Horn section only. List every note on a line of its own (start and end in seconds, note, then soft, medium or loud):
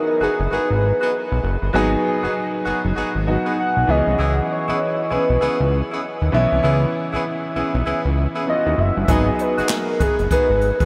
0.20 0.38 B3 medium
0.20 0.38 D#4 medium
0.20 0.38 F#4 medium
0.20 0.38 G#4 medium
0.51 0.68 B3 medium
0.51 0.69 D#4 medium
0.51 0.69 F#4 medium
0.51 0.69 G#4 medium
1.00 1.11 B3 medium
1.00 1.12 D#4 medium
1.00 1.12 F#4 medium
1.00 1.12 G#4 medium
1.74 1.91 B3 medium
1.74 1.91 D#4 medium
1.74 1.91 F#4 medium
1.74 1.91 G#4 medium
2.23 2.34 B3 medium
2.23 2.34 D#4 medium
2.23 2.34 F#4 medium
2.23 2.34 G#4 medium
2.65 2.83 B3 medium
2.65 2.83 D#4 medium
2.65 2.83 F#4 medium
2.65 2.83 G#4 medium
2.96 3.13 B3 medium
2.96 3.13 D#4 medium
2.96 3.13 F#4 medium
2.96 3.14 G#4 medium
3.45 3.56 B3 medium
3.45 3.56 D#4 medium
3.45 3.56 F#4 medium
3.45 3.57 G#4 medium
4.18 4.36 B3 medium
4.18 4.36 C#4 medium
4.18 4.36 E4 medium
4.18 4.36 G#4 medium
4.68 4.79 B3 medium
4.68 4.79 C#4 medium
4.68 4.79 E4 medium
4.68 4.79 G#4 medium
5.10 5.28 B3 medium
5.10 5.28 C#4 medium
5.10 5.28 E4 medium
5.10 5.28 G#4 medium
5.41 5.58 B3 medium
5.41 5.58 C#4 medium
5.41 5.58 E4 medium
5.41 5.58 G#4 medium
5.90 6.01 B3 medium
5.90 6.01 C#4 medium
5.90 6.01 E4 medium
5.90 6.02 G#4 medium
6.63 6.81 B3 medium
6.63 6.81 C#4 medium
6.63 6.81 E4 medium
6.63 6.81 G#4 loud
7.13 7.24 B3 medium
7.13 7.24 C#4 medium
7.13 7.24 E4 medium
7.13 7.24 G#4 medium
7.55 7.73 B3 medium
7.55 7.73 C#4 medium
7.55 7.73 E4 medium
7.55 7.73 G#4 medium
7.86 8.03 B3 medium
7.86 8.03 C#4 medium
7.86 8.03 E4 medium
7.86 8.03 G#4 medium
8.35 8.46 B3 medium
8.35 8.46 C#4 medium
8.35 8.46 E4 medium
8.35 8.46 G#4 medium
9.08 9.26 B3 medium
9.08 9.26 D#4 medium
9.08 9.26 F#4 medium
9.08 9.26 G#4 medium
9.58 9.69 B3 medium
9.58 9.69 D#4 medium
9.58 9.69 F#4 medium
9.58 9.69 G#4 medium
10.00 10.17 B3 medium
10.00 10.17 D#4 medium
10.00 10.18 F#4 medium
10.00 10.18 G#4 medium
10.30 10.48 B3 medium
10.30 10.48 D#4 medium
10.30 10.48 F#4 medium
10.30 10.48 G#4 medium
10.80 10.85 B3 medium
10.80 10.85 D#4 medium
10.80 10.85 F#4 medium
10.80 10.85 G#4 medium